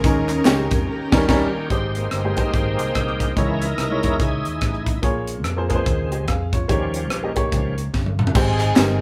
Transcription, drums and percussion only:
0.04 kick, closed hi-hat, tambourine
0.29 clap, closed hi-hat, tambourine
0.45 snare, clap, closed hi-hat, tambourine
0.71 kick, closed hi-hat, tambourine
1.12 kick, snare, crash
1.29 kick, snare, crash
1.70 kick, closed hi-hat
1.95 closed hi-hat
2.11 cross-stick, closed hi-hat
2.37 kick, closed hi-hat
2.54 kick, closed hi-hat
2.79 closed hi-hat
2.95 kick, cross-stick, closed hi-hat
3.08 cross-stick
3.20 kick, cross-stick, closed hi-hat
3.37 kick, closed hi-hat
3.62 closed hi-hat
3.78 cross-stick, closed hi-hat
4.03 kick, closed hi-hat
4.20 kick, closed hi-hat
4.45 closed hi-hat
4.61 kick, cross-stick, closed hi-hat
4.74 cross-stick
4.86 kick, closed hi-hat
5.03 kick, closed hi-hat
5.27 closed hi-hat
5.44 cross-stick, closed hi-hat
5.70 kick, closed hi-hat
5.86 kick, closed hi-hat
6.12 closed hi-hat
6.28 kick, cross-stick, closed hi-hat
6.53 kick, closed hi-hat
6.69 kick, closed hi-hat
6.94 closed hi-hat
7.10 cross-stick, closed hi-hat
7.36 kick, closed hi-hat
7.52 kick, closed hi-hat
7.78 closed hi-hat
7.94 kick, snare
8.06 high tom
8.19 mid tom
8.27 floor tom
8.35 kick, crash, tambourine
8.60 clap, closed hi-hat, tambourine
8.76 snare, clap, closed hi-hat, tambourine

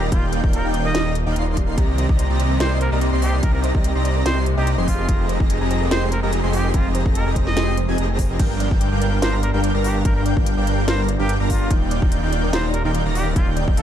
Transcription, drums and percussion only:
0.12 kick, closed hi-hat
0.33 closed hi-hat
0.44 kick
0.53 closed hi-hat
0.74 closed hi-hat
0.95 snare, closed hi-hat
1.15 closed hi-hat
1.36 closed hi-hat
1.57 kick, closed hi-hat
1.78 kick, closed hi-hat
1.98 closed hi-hat
2.09 kick
2.19 closed hi-hat
2.40 closed hi-hat
2.60 snare, closed hi-hat
2.81 closed hi-hat
3.01 closed hi-hat
3.22 open hi-hat
3.43 kick, closed hi-hat
3.64 closed hi-hat
3.75 kick
3.84 closed hi-hat
4.05 closed hi-hat
4.26 snare, closed hi-hat
4.46 closed hi-hat
4.67 closed hi-hat
4.88 kick, open hi-hat
5.09 kick, closed hi-hat
5.29 closed hi-hat
5.40 kick
5.50 closed hi-hat
5.71 closed hi-hat
5.91 snare, closed hi-hat
6.12 closed hi-hat
6.33 closed hi-hat
6.53 open hi-hat
6.74 kick, closed hi-hat
6.95 closed hi-hat
7.06 kick
7.15 closed hi-hat
7.36 kick, closed hi-hat
7.47 snare
7.57 snare, closed hi-hat
7.77 closed hi-hat
7.98 closed hi-hat
8.19 kick, open hi-hat
8.39 kick, closed hi-hat, crash
8.60 closed hi-hat
8.71 kick
8.81 closed hi-hat
9.02 closed hi-hat
9.22 snare, closed hi-hat
9.43 closed hi-hat
9.64 closed hi-hat
9.84 open hi-hat
10.05 kick, closed hi-hat
10.26 closed hi-hat
10.37 kick
10.46 closed hi-hat
10.67 closed hi-hat
10.88 snare, closed hi-hat
11.09 closed hi-hat
11.29 closed hi-hat
11.50 kick, open hi-hat
11.70 kick, closed hi-hat
11.91 closed hi-hat
12.02 kick
12.12 closed hi-hat
12.33 closed hi-hat
12.53 snare, closed hi-hat
12.74 closed hi-hat
12.95 closed hi-hat
13.15 open hi-hat
13.36 kick, closed hi-hat
13.57 closed hi-hat
13.68 kick
13.77 closed hi-hat

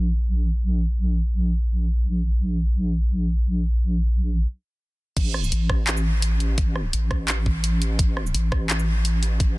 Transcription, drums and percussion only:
5.17 kick, closed hi-hat, crash
5.34 cross-stick
5.44 shaker
5.52 closed hi-hat
5.70 kick, cross-stick
5.87 clap, closed hi-hat
5.97 shaker
6.22 closed hi-hat
6.40 closed hi-hat
6.58 kick, closed hi-hat
6.76 cross-stick
6.93 closed hi-hat
7.11 kick, cross-stick
7.28 clap, closed hi-hat
7.46 kick
7.64 closed hi-hat
7.82 closed hi-hat
7.99 kick, closed hi-hat
8.17 cross-stick
8.26 shaker
8.35 closed hi-hat
8.52 kick, cross-stick
8.70 clap, closed hi-hat
8.79 shaker
9.05 closed hi-hat
9.23 closed hi-hat
9.40 kick, closed hi-hat

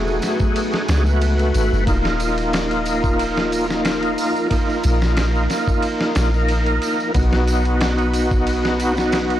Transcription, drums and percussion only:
0.07 tambourine
0.22 snare, ride, tambourine
0.39 kick, tambourine
0.56 ride, tambourine
0.73 snare, tambourine
0.88 snare, ride, tambourine
1.06 tambourine
1.21 ride, tambourine
1.39 ride, tambourine
1.54 ride, tambourine
1.74 tambourine
1.87 kick, ride, tambourine
2.05 snare, tambourine
2.20 ride, tambourine
2.38 ride, tambourine
2.53 snare, ride, tambourine
2.71 ride, tambourine
2.86 ride, tambourine
3.04 kick, tambourine
3.19 ride, tambourine
3.37 snare, tambourine
3.52 ride, tambourine
3.70 snare, tambourine
3.85 snare, ride, tambourine
4.03 ride, tambourine
4.18 open hi-hat, tambourine
4.36 tambourine
4.51 kick, ride, tambourine
4.69 tambourine
4.83 ride, tambourine
5.01 snare, tambourine
5.17 snare, ride, tambourine
5.35 tambourine
5.50 snare, ride, tambourine
5.68 kick, tambourine
5.83 ride, tambourine
6.00 snare, tambourine
6.15 snare, ride, tambourine
6.34 tambourine
6.49 ride, tambourine
6.66 ride, tambourine
6.82 ride, tambourine
7.00 tambourine
7.14 kick, ride, tambourine
7.33 snare, tambourine
7.47 ride, tambourine
7.65 ride, tambourine
7.81 snare, ride, tambourine
7.98 ride, tambourine
8.13 ride, tambourine
8.31 kick, tambourine
8.47 ride, tambourine
8.64 snare, tambourine
8.80 ride, tambourine
8.97 snare, tambourine
9.12 snare, ride, tambourine
9.30 ride, tambourine

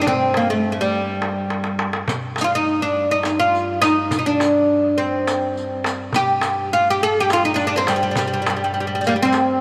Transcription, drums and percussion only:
0.07 darbuka dum
0.34 darbuka tek
0.49 darbuka ka
0.93 darbuka ka
1.22 darbuka tek
1.50 darbuka tek
1.64 darbuka ka
1.79 darbuka tek
1.93 darbuka ka
2.08 riq, darbuka dum
2.36 riq, darbuka tek
2.94 darbuka ka
3.23 riq, darbuka tek
3.53 riq, darbuka ka
3.82 riq, darbuka tek
3.97 darbuka ka
4.11 riq, darbuka dum
4.40 riq, darbuka tek
4.98 darbuka ka
5.27 riq, darbuka tek
5.56 riq, darbuka ka
5.84 riq, darbuka tek
5.98 darbuka ka
6.13 riq, darbuka dum
6.41 riq, darbuka tek
7.01 darbuka ka
7.30 riq, darbuka tek
7.59 riq, darbuka ka
7.87 riq, darbuka tek
8.02 darbuka ka
8.15 riq, darbuka dum
8.46 riq, darbuka tek
8.61 darbuka ka
9.04 riq, darbuka ka
9.32 riq, darbuka tek

